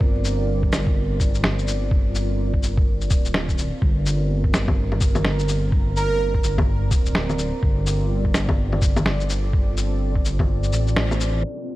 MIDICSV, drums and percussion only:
0, 0, Header, 1, 2, 480
1, 0, Start_track
1, 0, Tempo, 476190
1, 12, Time_signature, 4, 2, 24, 8
1, 11853, End_track
2, 0, Start_track
2, 0, Title_t, "Drums"
2, 7, Note_on_c, 9, 36, 117
2, 108, Note_off_c, 9, 36, 0
2, 249, Note_on_c, 9, 82, 52
2, 350, Note_off_c, 9, 82, 0
2, 634, Note_on_c, 9, 36, 63
2, 732, Note_on_c, 9, 38, 104
2, 732, Note_on_c, 9, 82, 54
2, 734, Note_off_c, 9, 36, 0
2, 833, Note_off_c, 9, 38, 0
2, 833, Note_off_c, 9, 82, 0
2, 873, Note_on_c, 9, 36, 103
2, 974, Note_off_c, 9, 36, 0
2, 1208, Note_on_c, 9, 36, 108
2, 1211, Note_on_c, 9, 82, 54
2, 1309, Note_off_c, 9, 36, 0
2, 1312, Note_off_c, 9, 82, 0
2, 1356, Note_on_c, 9, 82, 29
2, 1449, Note_on_c, 9, 38, 101
2, 1457, Note_off_c, 9, 82, 0
2, 1550, Note_off_c, 9, 38, 0
2, 1599, Note_on_c, 9, 82, 31
2, 1691, Note_off_c, 9, 82, 0
2, 1691, Note_on_c, 9, 82, 54
2, 1792, Note_off_c, 9, 82, 0
2, 1929, Note_on_c, 9, 36, 112
2, 2030, Note_off_c, 9, 36, 0
2, 2169, Note_on_c, 9, 82, 50
2, 2270, Note_off_c, 9, 82, 0
2, 2556, Note_on_c, 9, 36, 63
2, 2650, Note_on_c, 9, 82, 52
2, 2656, Note_off_c, 9, 36, 0
2, 2751, Note_off_c, 9, 82, 0
2, 2796, Note_on_c, 9, 36, 100
2, 2897, Note_off_c, 9, 36, 0
2, 3034, Note_on_c, 9, 82, 29
2, 3129, Note_off_c, 9, 82, 0
2, 3129, Note_on_c, 9, 82, 52
2, 3130, Note_on_c, 9, 36, 105
2, 3230, Note_off_c, 9, 82, 0
2, 3231, Note_off_c, 9, 36, 0
2, 3277, Note_on_c, 9, 82, 30
2, 3369, Note_on_c, 9, 38, 101
2, 3377, Note_off_c, 9, 82, 0
2, 3470, Note_off_c, 9, 38, 0
2, 3517, Note_on_c, 9, 36, 62
2, 3519, Note_on_c, 9, 82, 30
2, 3611, Note_off_c, 9, 82, 0
2, 3611, Note_on_c, 9, 82, 54
2, 3618, Note_off_c, 9, 36, 0
2, 3712, Note_off_c, 9, 82, 0
2, 3851, Note_on_c, 9, 36, 111
2, 3951, Note_off_c, 9, 36, 0
2, 4093, Note_on_c, 9, 82, 51
2, 4194, Note_off_c, 9, 82, 0
2, 4476, Note_on_c, 9, 36, 60
2, 4574, Note_on_c, 9, 38, 95
2, 4574, Note_on_c, 9, 82, 51
2, 4577, Note_off_c, 9, 36, 0
2, 4674, Note_off_c, 9, 38, 0
2, 4674, Note_off_c, 9, 82, 0
2, 4716, Note_on_c, 9, 36, 103
2, 4716, Note_on_c, 9, 61, 47
2, 4816, Note_off_c, 9, 36, 0
2, 4817, Note_off_c, 9, 61, 0
2, 4957, Note_on_c, 9, 61, 32
2, 5049, Note_on_c, 9, 82, 52
2, 5050, Note_on_c, 9, 36, 101
2, 5058, Note_off_c, 9, 61, 0
2, 5150, Note_off_c, 9, 82, 0
2, 5151, Note_off_c, 9, 36, 0
2, 5193, Note_on_c, 9, 61, 57
2, 5193, Note_on_c, 9, 82, 29
2, 5288, Note_on_c, 9, 38, 100
2, 5293, Note_off_c, 9, 61, 0
2, 5293, Note_off_c, 9, 82, 0
2, 5389, Note_off_c, 9, 38, 0
2, 5435, Note_on_c, 9, 82, 30
2, 5530, Note_off_c, 9, 82, 0
2, 5530, Note_on_c, 9, 82, 52
2, 5631, Note_off_c, 9, 82, 0
2, 5769, Note_on_c, 9, 36, 105
2, 5870, Note_off_c, 9, 36, 0
2, 6012, Note_on_c, 9, 82, 49
2, 6113, Note_off_c, 9, 82, 0
2, 6395, Note_on_c, 9, 36, 54
2, 6487, Note_on_c, 9, 82, 50
2, 6495, Note_off_c, 9, 36, 0
2, 6588, Note_off_c, 9, 82, 0
2, 6634, Note_on_c, 9, 36, 101
2, 6635, Note_on_c, 9, 61, 50
2, 6735, Note_off_c, 9, 36, 0
2, 6736, Note_off_c, 9, 61, 0
2, 6968, Note_on_c, 9, 36, 100
2, 6970, Note_on_c, 9, 82, 50
2, 7068, Note_off_c, 9, 36, 0
2, 7070, Note_off_c, 9, 82, 0
2, 7115, Note_on_c, 9, 82, 29
2, 7208, Note_on_c, 9, 38, 98
2, 7216, Note_off_c, 9, 82, 0
2, 7308, Note_off_c, 9, 38, 0
2, 7354, Note_on_c, 9, 61, 37
2, 7354, Note_on_c, 9, 82, 29
2, 7446, Note_off_c, 9, 82, 0
2, 7446, Note_on_c, 9, 82, 51
2, 7455, Note_off_c, 9, 61, 0
2, 7547, Note_off_c, 9, 82, 0
2, 7688, Note_on_c, 9, 36, 106
2, 7789, Note_off_c, 9, 36, 0
2, 7929, Note_on_c, 9, 82, 52
2, 8030, Note_off_c, 9, 82, 0
2, 8314, Note_on_c, 9, 36, 55
2, 8409, Note_on_c, 9, 38, 94
2, 8409, Note_on_c, 9, 82, 51
2, 8415, Note_off_c, 9, 36, 0
2, 8510, Note_off_c, 9, 38, 0
2, 8510, Note_off_c, 9, 82, 0
2, 8554, Note_on_c, 9, 36, 98
2, 8555, Note_on_c, 9, 61, 50
2, 8655, Note_off_c, 9, 36, 0
2, 8656, Note_off_c, 9, 61, 0
2, 8795, Note_on_c, 9, 61, 37
2, 8889, Note_on_c, 9, 36, 101
2, 8889, Note_on_c, 9, 82, 54
2, 8896, Note_off_c, 9, 61, 0
2, 8990, Note_off_c, 9, 36, 0
2, 8990, Note_off_c, 9, 82, 0
2, 9037, Note_on_c, 9, 61, 61
2, 9037, Note_on_c, 9, 82, 30
2, 9131, Note_on_c, 9, 38, 98
2, 9138, Note_off_c, 9, 61, 0
2, 9138, Note_off_c, 9, 82, 0
2, 9231, Note_off_c, 9, 38, 0
2, 9277, Note_on_c, 9, 82, 31
2, 9371, Note_off_c, 9, 82, 0
2, 9371, Note_on_c, 9, 82, 53
2, 9471, Note_off_c, 9, 82, 0
2, 9610, Note_on_c, 9, 36, 110
2, 9711, Note_off_c, 9, 36, 0
2, 9850, Note_on_c, 9, 82, 54
2, 9950, Note_off_c, 9, 82, 0
2, 10235, Note_on_c, 9, 36, 60
2, 10333, Note_on_c, 9, 82, 54
2, 10336, Note_off_c, 9, 36, 0
2, 10434, Note_off_c, 9, 82, 0
2, 10475, Note_on_c, 9, 36, 102
2, 10479, Note_on_c, 9, 61, 51
2, 10576, Note_off_c, 9, 36, 0
2, 10580, Note_off_c, 9, 61, 0
2, 10719, Note_on_c, 9, 82, 30
2, 10813, Note_off_c, 9, 82, 0
2, 10813, Note_on_c, 9, 82, 53
2, 10913, Note_off_c, 9, 82, 0
2, 10961, Note_on_c, 9, 82, 30
2, 11053, Note_on_c, 9, 38, 100
2, 11062, Note_off_c, 9, 82, 0
2, 11154, Note_off_c, 9, 38, 0
2, 11202, Note_on_c, 9, 61, 38
2, 11202, Note_on_c, 9, 82, 31
2, 11295, Note_off_c, 9, 82, 0
2, 11295, Note_on_c, 9, 82, 57
2, 11302, Note_off_c, 9, 61, 0
2, 11396, Note_off_c, 9, 82, 0
2, 11535, Note_on_c, 9, 49, 69
2, 11635, Note_off_c, 9, 49, 0
2, 11775, Note_on_c, 9, 82, 49
2, 11853, Note_off_c, 9, 82, 0
2, 11853, End_track
0, 0, End_of_file